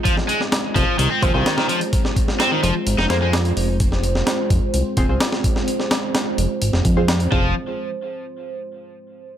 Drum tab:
HH |x-x-x-x-x-x-x-xx|x-x-x-x-x-x-xxo-|x-x-x-x-x-x-x-x-|x-x-x-x-x-x-xx--|
SD |-o-oo-------oo--|-o-oo----oo-o---|-o-oo-------oo-o|-oo-o----o--o---|
BD |o-----o---o-----|o-o-------------|o-----o---o---o-|----------o---o-|

HH |----------------|
SD |----------------|
BD |----------------|